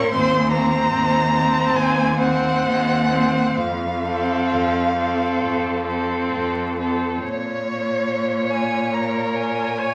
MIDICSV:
0, 0, Header, 1, 5, 480
1, 0, Start_track
1, 0, Key_signature, -5, "minor"
1, 0, Tempo, 816327
1, 65, Time_signature, 4, 2, 24, 8
1, 1027, Tempo, 881057
1, 1507, Tempo, 937500
1, 2467, Tempo, 907716
1, 3907, Tempo, 845070
1, 5449, End_track
2, 0, Start_track
2, 0, Title_t, "Violin"
2, 0, Program_c, 0, 40
2, 0, Note_on_c, 0, 85, 127
2, 63, Note_off_c, 0, 85, 0
2, 66, Note_on_c, 0, 84, 119
2, 298, Note_off_c, 0, 84, 0
2, 303, Note_on_c, 0, 82, 127
2, 1033, Note_on_c, 0, 80, 115
2, 1041, Note_off_c, 0, 82, 0
2, 1266, Note_off_c, 0, 80, 0
2, 1276, Note_on_c, 0, 78, 118
2, 1990, Note_on_c, 0, 77, 100
2, 1997, Note_off_c, 0, 78, 0
2, 3435, Note_off_c, 0, 77, 0
2, 3917, Note_on_c, 0, 73, 89
2, 4635, Note_on_c, 0, 80, 83
2, 4644, Note_off_c, 0, 73, 0
2, 4878, Note_on_c, 0, 82, 68
2, 4887, Note_off_c, 0, 80, 0
2, 5115, Note_on_c, 0, 80, 84
2, 5123, Note_off_c, 0, 82, 0
2, 5449, Note_off_c, 0, 80, 0
2, 5449, End_track
3, 0, Start_track
3, 0, Title_t, "Violin"
3, 0, Program_c, 1, 40
3, 0, Note_on_c, 1, 70, 79
3, 63, Note_off_c, 1, 70, 0
3, 68, Note_on_c, 1, 72, 93
3, 299, Note_off_c, 1, 72, 0
3, 307, Note_on_c, 1, 72, 76
3, 776, Note_off_c, 1, 72, 0
3, 784, Note_on_c, 1, 72, 86
3, 1254, Note_off_c, 1, 72, 0
3, 1259, Note_on_c, 1, 72, 77
3, 1729, Note_off_c, 1, 72, 0
3, 1742, Note_on_c, 1, 72, 66
3, 1978, Note_off_c, 1, 72, 0
3, 2232, Note_on_c, 1, 69, 67
3, 2702, Note_off_c, 1, 69, 0
3, 2712, Note_on_c, 1, 69, 67
3, 3182, Note_off_c, 1, 69, 0
3, 3188, Note_on_c, 1, 69, 64
3, 3663, Note_off_c, 1, 69, 0
3, 3679, Note_on_c, 1, 69, 59
3, 3906, Note_off_c, 1, 69, 0
3, 3911, Note_on_c, 1, 73, 67
3, 5449, Note_off_c, 1, 73, 0
3, 5449, End_track
4, 0, Start_track
4, 0, Title_t, "Viola"
4, 0, Program_c, 2, 41
4, 0, Note_on_c, 2, 61, 85
4, 64, Note_off_c, 2, 61, 0
4, 73, Note_on_c, 2, 60, 80
4, 302, Note_off_c, 2, 60, 0
4, 311, Note_on_c, 2, 60, 85
4, 778, Note_off_c, 2, 60, 0
4, 792, Note_on_c, 2, 60, 94
4, 1258, Note_off_c, 2, 60, 0
4, 1265, Note_on_c, 2, 60, 78
4, 1732, Note_off_c, 2, 60, 0
4, 1747, Note_on_c, 2, 60, 74
4, 1980, Note_off_c, 2, 60, 0
4, 2233, Note_on_c, 2, 60, 74
4, 2703, Note_off_c, 2, 60, 0
4, 2713, Note_on_c, 2, 60, 75
4, 3182, Note_off_c, 2, 60, 0
4, 3193, Note_on_c, 2, 60, 67
4, 3666, Note_off_c, 2, 60, 0
4, 3673, Note_on_c, 2, 60, 63
4, 3903, Note_off_c, 2, 60, 0
4, 4882, Note_on_c, 2, 70, 65
4, 5360, Note_on_c, 2, 73, 78
4, 5369, Note_off_c, 2, 70, 0
4, 5449, Note_off_c, 2, 73, 0
4, 5449, End_track
5, 0, Start_track
5, 0, Title_t, "Cello"
5, 0, Program_c, 3, 42
5, 70, Note_on_c, 3, 39, 105
5, 488, Note_off_c, 3, 39, 0
5, 541, Note_on_c, 3, 39, 113
5, 968, Note_off_c, 3, 39, 0
5, 1024, Note_on_c, 3, 39, 102
5, 1448, Note_off_c, 3, 39, 0
5, 1512, Note_on_c, 3, 39, 100
5, 1926, Note_off_c, 3, 39, 0
5, 1982, Note_on_c, 3, 41, 84
5, 2411, Note_off_c, 3, 41, 0
5, 2474, Note_on_c, 3, 41, 91
5, 2896, Note_off_c, 3, 41, 0
5, 2957, Note_on_c, 3, 41, 72
5, 3378, Note_off_c, 3, 41, 0
5, 3436, Note_on_c, 3, 41, 75
5, 3857, Note_off_c, 3, 41, 0
5, 3911, Note_on_c, 3, 46, 70
5, 5449, Note_off_c, 3, 46, 0
5, 5449, End_track
0, 0, End_of_file